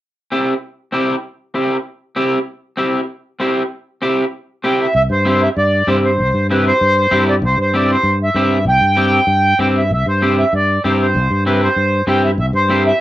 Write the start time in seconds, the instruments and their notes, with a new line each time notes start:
0.31 clean electric guitar C4 E4 G4
0.92 clean electric guitar C4 E4 G4
1.54 clean electric guitar C4 E4 G4
2.16 clean electric guitar C4 E4 G4
2.77 clean electric guitar C4 E4 G4
3.40 clean electric guitar C4 E4 G4
4.02 clean electric guitar C4 E4 G4
4.64 clean electric guitar C4 E4 G4, accordion G5
4.81 accordion E5
4.95 fingered electric bass C2, accordion E5
5.10 fingered electric bass G2, accordion C5
5.25 clean electric guitar C4 E4 G4
5.42 accordion E5
5.57 fingered electric bass G2, accordion D5
5.87 fingered electric bass G2, clean electric guitar C4 E4 G4, accordion C5
6.05 accordion C5
6.18 fingered electric bass C2
6.34 fingered electric bass G2
6.51 clean electric guitar C4 E4 G4, accordion B4
6.67 accordion C5
6.81 fingered electric bass G2
7.11 fingered electric bass G2, clean electric guitar C4 E4 G4
7.29 accordion D5
7.42 fingered electric bass C2, accordion C5
7.57 fingered electric bass G2, accordion C5
7.74 clean electric guitar C4 E4 G4, accordion D5
7.91 accordion C5
8.03 fingered electric bass G2
8.23 accordion E5
8.34 fingered electric bass G2, clean electric guitar C4 E4 G4
8.65 fingered electric bass C2, accordion G5
8.81 fingered electric bass G2
8.97 clean electric guitar C4 E4 G4
9.27 fingered electric bass G2
9.59 fingered electric bass G2, clean electric guitar C4 E4 G4, accordion G5
9.77 accordion E5
9.91 fingered electric bass C2, accordion E5
10.06 fingered electric bass G2, accordion C5
10.22 clean electric guitar C4 E4 G4
10.39 accordion E5
10.53 fingered electric bass G2, accordion D5
10.84 fingered electric bass G2, clean electric guitar C4 E4 G4, accordion C5
11.02 accordion C5
11.15 fingered electric bass C2
11.30 fingered electric bass G2
11.46 clean electric guitar C4 E4 G4, accordion B4
11.63 accordion C5
11.76 fingered electric bass G2
12.07 fingered electric bass G2, clean electric guitar C4 E4 G4, accordion G5
12.25 accordion E5
12.38 fingered electric bass C2, accordion E5
12.53 fingered electric bass G2, accordion C5
12.70 clean electric guitar C4 E4 G4
12.87 accordion E5